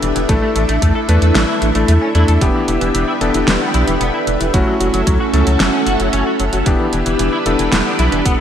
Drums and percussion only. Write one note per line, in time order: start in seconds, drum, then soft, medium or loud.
0.03 closed hi-hat medium
0.16 closed hi-hat medium
0.29 kick loud
0.29 closed hi-hat medium
0.56 closed hi-hat medium
0.69 closed hi-hat medium
0.82 kick medium
0.82 closed hi-hat medium
1.09 closed hi-hat medium
1.22 closed hi-hat medium
1.35 snare loud
1.35 closed hi-hat medium
1.62 closed hi-hat medium
1.75 closed hi-hat medium
1.88 closed hi-hat medium
2.15 closed hi-hat medium
2.28 closed hi-hat medium
2.41 kick loud
2.41 closed hi-hat medium
2.68 closed hi-hat medium
2.81 closed hi-hat medium
2.95 closed hi-hat medium
3.21 closed hi-hat medium
3.34 closed hi-hat medium
3.48 snare loud
3.48 closed hi-hat medium
3.74 closed hi-hat medium
3.88 closed hi-hat medium
4.01 closed hi-hat medium
4.27 closed hi-hat medium
4.41 closed hi-hat medium
4.54 kick loud
4.54 closed hi-hat medium
4.81 closed hi-hat medium
4.94 closed hi-hat medium
5.07 kick medium
5.07 closed hi-hat medium
5.34 closed hi-hat medium
5.47 closed hi-hat medium
5.60 snare loud
5.60 closed hi-hat medium
5.87 closed hi-hat medium
6.00 closed hi-hat medium
6.13 closed hi-hat medium
6.40 closed hi-hat medium
6.53 closed hi-hat medium
6.66 kick loud
6.66 closed hi-hat medium
6.93 closed hi-hat medium
7.06 closed hi-hat medium
7.19 closed hi-hat medium
7.46 closed hi-hat medium
7.59 closed hi-hat medium
7.72 snare loud
7.72 closed hi-hat medium
7.99 closed hi-hat medium
8.12 closed hi-hat medium
8.26 kick loud
8.26 closed hi-hat medium